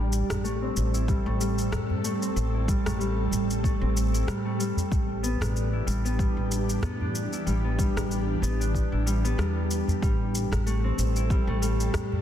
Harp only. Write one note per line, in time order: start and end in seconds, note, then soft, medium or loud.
0.00 1.07 G3 medium
0.44 1.26 A3 medium
0.62 2.21 C4 medium
0.94 2.53 E4 medium
1.08 1.39 G3 medium
1.26 2.04 A3 medium
1.40 2.67 G3 medium
2.04 2.85 A3 loud
2.21 3.81 C4 medium
2.54 4.13 E4 medium
2.68 2.98 G3 loud
2.86 3.63 A3 loud
2.99 4.26 G3 medium
3.63 4.44 A3 medium
3.81 5.29 C4 medium
4.13 5.73 E4 medium
4.27 4.58 G3 loud
4.45 7.78 A3 medium
4.59 4.97 G3 loud
5.23 6.04 B3 loud
5.41 7.00 D4 medium
5.73 7.32 E4 medium
5.87 6.17 G3 loud
6.04 6.82 B3 loud
6.18 7.45 G3 medium
6.82 7.64 B3 loud
7.01 8.60 D4 medium
7.32 8.92 E4 medium
7.46 7.77 G3 medium
7.64 8.42 B3 medium
7.78 9.05 G3 medium
8.42 9.24 B3 medium
8.60 11.40 D4 medium
8.92 11.16 E4 medium
9.06 9.37 G3 medium
9.24 10.90 B3 medium
9.38 10.01 G3 medium
10.02 11.29 G3 medium
10.66 11.47 A3 medium
10.84 12.22 C4 medium
11.16 12.22 E4 medium
11.30 11.60 G3 medium
11.48 12.22 A3 medium
11.62 12.22 G3 medium